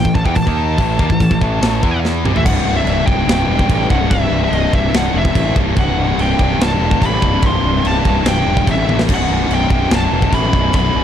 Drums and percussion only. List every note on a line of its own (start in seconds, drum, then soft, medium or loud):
0.05 kick medium
0.15 kick medium
0.26 kick medium
0.35 kick medium
0.35 open hi-hat medium
0.47 kick medium
0.78 kick medium
0.78 open hi-hat medium
0.99 kick loud
1.10 kick medium
1.20 kick medium
1.20 open hi-hat medium
1.31 kick medium
1.41 kick medium
1.62 snare loud
1.62 open hi-hat medium
1.83 kick loud
2.05 snare medium
2.25 mid tom medium
2.36 floor tom medium
2.46 kick loud
2.46 crash loud
2.46 crash medium
2.87 crash medium
3.08 kick medium
3.29 snare loud
3.29 crash medium
3.59 kick medium
3.70 kick medium
3.70 crash medium
3.90 kick medium
4.11 kick loud
4.11 crash medium
4.53 crash medium
4.73 kick medium
4.94 snare loud
4.94 crash medium
5.25 kick medium
5.35 kick medium
5.35 crash medium
5.56 kick loud
5.76 kick loud
5.76 crash medium
6.19 crash medium
6.39 kick loud
6.61 snare loud
6.61 crash medium
6.91 kick medium
7.02 kick medium
7.02 crash medium
7.22 kick medium
7.42 kick loud
7.42 crash medium
7.85 crash medium
8.05 kick medium
8.26 snare loud
8.26 crash medium
8.57 kick medium
8.67 kick medium
8.67 crash medium
8.89 high tom medium
8.99 snare loud
9.09 kick loud
9.09 crash loud
9.09 crash medium
9.51 crash medium
9.70 kick medium
9.91 snare loud
9.91 crash medium
10.22 kick medium
10.32 kick medium
10.32 crash medium
10.53 kick medium
10.73 kick loud
10.73 crash medium